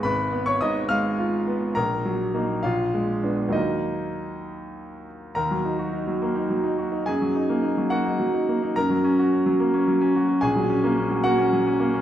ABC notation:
X:1
M:6/8
L:1/16
Q:3/8=70
K:Ebm
V:1 name="Grand piano"
[cc']3 [dd'] [ee']2 [ff']6 | [Bb]6 [Ff]6 | [Ee]8- [Ee]2 z2 | [Bb]12 |
[Aa]6 [Gg]6 | [Bb]12 | [Aa]6 [Gg]6 |]
V:2 name="Grand piano"
A,,,2 C2 A,,2 A,2 F2 C2 | B,,,2 G,2 [B,E]2 B,,,2 A,2 [C=D]2 | [E,,G,B,]12 | E,, G, E G E G, B, E G, E G E |
G,, G, E B, E G, B, E G, E B, E | G,, G, D G D G, B, D G, D G D | B,,, G, D B, D G, B, D G, D B, D |]